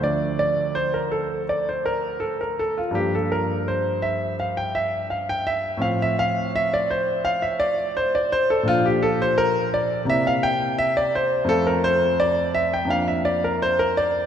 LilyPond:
<<
  \new Staff \with { instrumentName = "Grand piano" } { \time 4/4 \key f \major \tempo 4 = 84 d''8 d''8 c''16 bes'16 a'8 d''16 c''16 bes'8 a'16 bes'16 a'16 f'16 | g'16 a'16 bes'8 c''8 e''8 f''16 g''16 e''8 f''16 g''16 e''8 | f''16 e''16 f''8 e''16 d''16 c''8 f''16 e''16 d''8 c''16 d''16 c''16 a'16 | f'16 g'16 a'16 c''16 bes'8 d''8 e''16 f''16 g''8 e''16 d''16 c''8 |
a'16 bes'16 c''8 d''8 e''16 g''16 f''16 e''16 d''16 bes'16 c''16 bes'16 d''8 | }
  \new Staff \with { instrumentName = "Grand piano" } { \time 4/4 \key f \major <d, f a d'>1 | <g, f bes d'>1 | <a, f c' f'>1 | <bes, f d'>2 <c bes c' e'>2 |
<f, a c' f'>2 <f, bes d' f'>2 | }
>>